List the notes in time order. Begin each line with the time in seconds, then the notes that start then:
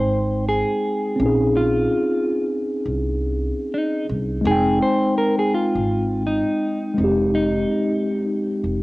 Already playing: G#1 G#3 C4 D#4 C5 G5
0.48 G#4
1.16 A#1 C4 C#4
1.23 D#4 G#4
1.57 F4
2.86 C2
3.74 D#4
4.09 C2
4.41 F1 G#3 C4
4.47 D#4 G#4
4.51 G5
4.82 C5
5.18 A#4
5.39 G#4
5.54 F4
5.75 G#1
6.27 D#4
6.94 F1 G#3 C4
7.01 D#4 G4
7.35 D#4
8.64 F1